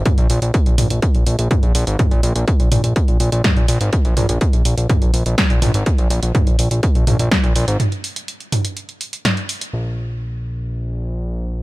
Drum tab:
HH |xxoxxxoxxxoxxxox|xxoxxxoxxxoxxxox|xxoxxxoxxxoxxxox|xxoxxxoxxxoxxxox|
SD |----------------|------------o---|------------o---|------------o---|
T2 |o-----o-----o---|o-----o-----o---|--o-----o-----o-|----o-----o-----|
BD |o---o---o---o---|o---o---o---o---|o---o---o---o---|o---o---o---o---|

HH |xxoxxxoxxxoxxxox|----------------|
SD |------------o---|----------------|
T2 |o-----o-----o---|----------------|
BD |----------------|----------------|